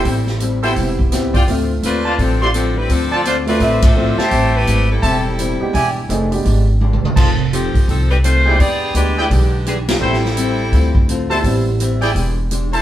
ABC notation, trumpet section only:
X:1
M:4/4
L:1/8
Q:"Swing" 1/4=168
K:Am
V:1 name="Trumpet section"
z3 [EAcg] z3 [Fcdg] | z3 [Fcda] z [Fcdc'] z2 | z [Fcda] z2 [cde]3 [Gcea]- | [Gcea]2 z2 [Gcea] z3 |
[Gde^g] z6 z | [Fc_ea] z6 [=E^Gd=g] | z3 [E^Gd=g] z4 | [EAcg] z6 [EAca] |
z3 [E^Gd=g] z3 [EAca] |]